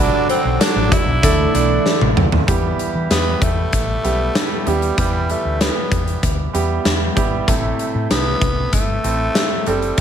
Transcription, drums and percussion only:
0.29 closed hi-hat medium
0.61 snare loud
0.61 closed hi-hat medium
0.61 tambourine medium
0.92 kick loud
0.92 closed hi-hat medium
1.23 kick medium
1.23 closed hi-hat medium
1.55 closed hi-hat medium
1.86 snare medium
2.01 high tom medium
2.17 mid tom loud
2.32 floor tom medium
2.48 kick medium
2.48 closed hi-hat medium
2.79 closed hi-hat medium
3.11 snare medium
3.11 closed hi-hat medium
3.42 kick medium
3.42 closed hi-hat medium
3.73 kick medium
3.73 closed hi-hat medium
4.05 closed hi-hat medium
4.35 snare loud
4.35 closed hi-hat medium
4.67 closed hi-hat medium
4.82 closed hi-hat soft
4.98 kick loud
4.98 closed hi-hat medium
5.30 closed hi-hat medium
5.61 snare medium
5.61 closed hi-hat medium
5.92 kick medium
5.92 closed hi-hat medium
6.08 closed hi-hat soft
6.23 kick medium
6.23 closed hi-hat medium
6.55 closed hi-hat medium
6.85 snare loud
6.85 closed hi-hat medium
7.17 kick medium
7.17 closed hi-hat medium
7.48 kick loud
7.48 closed hi-hat medium
7.79 closed hi-hat medium
8.11 snare loud
8.11 closed hi-hat medium
8.41 kick medium
8.41 closed hi-hat medium
8.73 kick medium
8.73 closed hi-hat medium
9.04 closed hi-hat medium
9.35 snare loud
9.35 closed hi-hat medium
9.66 closed hi-hat medium
9.82 closed hi-hat soft
9.98 closed hi-hat medium

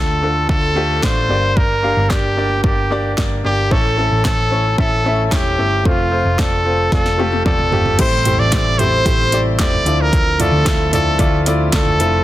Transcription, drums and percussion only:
0.49 kick medium
1.03 kick medium
1.03 snare loud
1.03 clap medium
1.57 kick medium
2.10 kick medium
2.10 snare medium
2.10 clap medium
2.64 kick loud
3.18 kick loud
3.18 snare loud
3.18 clap medium
3.71 kick medium
4.25 kick medium
4.25 snare medium
4.25 clap medium
4.78 kick medium
5.32 kick loud
5.32 snare medium
5.32 clap medium
5.85 kick medium
6.39 kick medium
6.39 snare medium
6.39 clap medium
6.92 kick medium
6.92 snare soft
7.06 snare soft
7.19 high tom medium
7.32 high tom soft
7.46 kick medium
7.46 mid tom medium
7.59 mid tom medium
7.72 floor tom medium
7.86 floor tom medium
7.99 kick medium
7.99 closed hi-hat medium
7.99 crash medium
8.25 closed hi-hat medium
8.25 floor tom medium
8.52 kick loud
8.52 snare loud
8.52 clap medium
8.52 closed hi-hat medium
8.79 closed hi-hat medium
8.79 floor tom medium
9.06 kick loud
9.06 closed hi-hat medium
9.32 snare soft
9.32 closed hi-hat medium
9.59 kick loud
9.59 snare loud
9.59 clap loud
9.59 closed hi-hat medium
9.73 floor tom medium
9.86 closed hi-hat medium
10.13 kick loud
10.13 closed hi-hat medium
10.40 closed hi-hat medium
10.40 floor tom medium
10.66 kick loud
10.66 snare loud
10.66 clap medium
10.66 closed hi-hat medium
10.93 closed hi-hat medium
10.93 floor tom medium
11.19 kick loud
11.19 closed hi-hat medium
11.46 snare soft
11.46 closed hi-hat medium
11.73 kick loud
11.73 snare loud
11.73 clap medium
11.73 closed hi-hat medium
11.86 floor tom medium
12.00 closed hi-hat medium

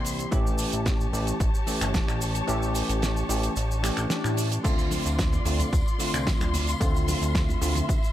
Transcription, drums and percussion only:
0.05 open hi-hat medium
0.05 shaker loud
0.19 closed hi-hat medium
0.19 shaker medium
0.32 kick loud
0.32 closed hi-hat medium
0.32 shaker medium
0.47 shaker soft
0.58 open hi-hat loud
0.58 shaker medium
0.72 closed hi-hat medium
0.72 shaker medium
0.86 kick loud
0.86 snare loud
0.86 closed hi-hat medium
0.86 shaker medium
1.00 shaker soft
1.13 open hi-hat medium
1.13 shaker medium
1.27 closed hi-hat medium
1.27 shaker medium
1.40 kick loud
1.40 closed hi-hat medium
1.40 shaker medium
1.55 shaker soft
1.67 open hi-hat loud
1.67 shaker medium
1.81 finger snap medium
1.81 closed hi-hat medium
1.81 shaker medium
1.94 kick loud
1.94 snare loud
1.94 closed hi-hat medium
1.94 shaker medium
2.08 finger snap medium
2.08 shaker soft
2.21 open hi-hat loud
2.21 shaker medium
2.35 closed hi-hat medium
2.35 shaker medium
2.48 closed hi-hat medium
2.48 shaker medium
2.63 shaker soft
2.75 open hi-hat loud
2.75 shaker loud
2.89 closed hi-hat medium
2.89 shaker soft
3.02 snare loud
3.02 closed hi-hat medium
3.02 shaker medium
3.17 shaker soft
3.29 open hi-hat loud
3.29 shaker medium
3.43 closed hi-hat medium
3.43 shaker soft
3.56 closed hi-hat medium
3.56 shaker medium
3.71 shaker soft
3.84 finger snap medium
3.84 open hi-hat loud
3.84 shaker medium
3.97 finger snap medium
3.97 closed hi-hat medium
3.97 shaker medium
4.10 snare loud
4.10 closed hi-hat medium
4.10 shaker medium
4.24 finger snap medium
4.24 shaker soft
4.37 open hi-hat loud
4.37 shaker medium
4.52 closed hi-hat medium
4.52 shaker medium
4.64 kick loud
4.64 closed hi-hat medium
4.64 crash medium
4.64 tambourine medium
4.64 shaker medium
4.79 tambourine soft
4.79 shaker soft
4.91 open hi-hat loud
4.91 high conga loud
4.91 shaker medium
5.06 closed hi-hat medium
5.06 tambourine medium
5.06 shaker medium
5.19 kick loud
5.19 snare loud
5.19 closed hi-hat medium
5.19 tambourine medium
5.19 shaker medium
5.32 tambourine soft
5.32 low conga medium
5.32 shaker soft
5.45 open hi-hat loud
5.45 shaker medium
5.59 closed hi-hat medium
5.59 tambourine medium
5.59 high conga medium
5.59 low conga medium
5.59 shaker soft
5.73 kick loud
5.73 closed hi-hat medium
5.73 tambourine medium
5.73 shaker medium
5.86 tambourine soft
5.86 shaker soft
6.00 open hi-hat loud
6.00 shaker medium
6.14 finger snap medium
6.14 closed hi-hat medium
6.14 tambourine medium
6.14 shaker soft
6.27 kick loud
6.27 snare loud
6.27 closed hi-hat medium
6.27 tambourine medium
6.27 shaker medium
6.41 finger snap medium
6.41 tambourine soft
6.41 high conga loud
6.41 shaker soft
6.54 open hi-hat loud
6.54 low conga medium
6.54 shaker medium
6.67 closed hi-hat medium
6.67 tambourine medium
6.67 shaker soft
6.81 kick loud
6.81 closed hi-hat medium
6.81 tambourine medium
6.81 shaker medium
6.94 tambourine soft
6.94 shaker soft
7.08 open hi-hat loud
7.08 high conga medium
7.08 shaker medium
7.22 closed hi-hat medium
7.22 tambourine medium
7.22 shaker soft
7.35 kick loud
7.35 snare loud
7.35 closed hi-hat medium
7.35 tambourine medium
7.35 shaker medium
7.48 tambourine soft
7.48 low conga medium
7.48 shaker soft
7.62 open hi-hat loud
7.62 shaker medium
7.75 closed hi-hat medium
7.75 tambourine medium
7.75 high conga medium
7.75 low conga medium
7.75 shaker medium
7.89 kick loud
7.89 closed hi-hat medium
7.89 tambourine medium
7.89 shaker medium
8.02 tambourine soft
8.02 shaker soft

